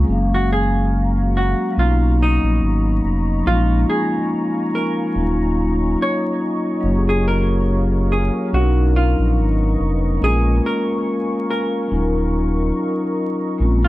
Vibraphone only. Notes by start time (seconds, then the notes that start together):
0.03 F#3 G#3
0.08 A#3 C#4
0.12 F5
1.72 F#3 A#3
1.76 B3 C#4
1.80 D#4
3.43 F3 G#3
3.47 A#3 C#4
3.52 D#4
3.58 F4
5.12 F#3 A#3 C#4
5.18 D#4 F4
6.81 F#3 A#3
6.85 C#4 F4
6.89 G4
6.96 G#4
8.49 F#3 B3 C#4
8.55 D4 A#4
8.61 D#4
10.18 G#3 A#3
10.22 C#4 F4
10.26 A#4
11.87 F#3 C#4
11.91 D#4 F4
11.96 A#4
13.58 G#3 A#3 C4 C#4
13.62 F4